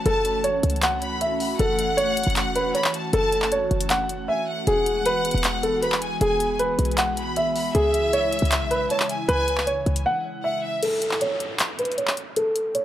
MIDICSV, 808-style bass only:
0, 0, Header, 1, 2, 480
1, 0, Start_track
1, 0, Key_signature, 3, "minor"
1, 0, Tempo, 384615
1, 70, Time_signature, 4, 2, 24, 8
1, 16034, End_track
2, 0, Start_track
2, 0, Title_t, "808-style bass"
2, 0, Program_c, 0, 38
2, 70, Note_on_c, 0, 30, 109
2, 761, Note_off_c, 0, 30, 0
2, 790, Note_on_c, 0, 37, 108
2, 1942, Note_off_c, 0, 37, 0
2, 1990, Note_on_c, 0, 30, 110
2, 2796, Note_off_c, 0, 30, 0
2, 2829, Note_on_c, 0, 30, 110
2, 3069, Note_on_c, 0, 28, 101
2, 3088, Note_off_c, 0, 30, 0
2, 3412, Note_off_c, 0, 28, 0
2, 3909, Note_on_c, 0, 30, 110
2, 4601, Note_off_c, 0, 30, 0
2, 4629, Note_on_c, 0, 30, 109
2, 5350, Note_off_c, 0, 30, 0
2, 5830, Note_on_c, 0, 28, 104
2, 6430, Note_on_c, 0, 27, 99
2, 6448, Note_off_c, 0, 28, 0
2, 6550, Note_on_c, 0, 28, 106
2, 6568, Note_off_c, 0, 27, 0
2, 6664, Note_off_c, 0, 28, 0
2, 6670, Note_on_c, 0, 28, 103
2, 7707, Note_off_c, 0, 28, 0
2, 7750, Note_on_c, 0, 28, 111
2, 8441, Note_off_c, 0, 28, 0
2, 8470, Note_on_c, 0, 35, 109
2, 9622, Note_off_c, 0, 35, 0
2, 9670, Note_on_c, 0, 37, 110
2, 10476, Note_off_c, 0, 37, 0
2, 10510, Note_on_c, 0, 37, 111
2, 10750, Note_on_c, 0, 35, 104
2, 10769, Note_off_c, 0, 37, 0
2, 11092, Note_off_c, 0, 35, 0
2, 11590, Note_on_c, 0, 37, 112
2, 12281, Note_off_c, 0, 37, 0
2, 12310, Note_on_c, 0, 37, 109
2, 12550, Note_off_c, 0, 37, 0
2, 16034, End_track
0, 0, End_of_file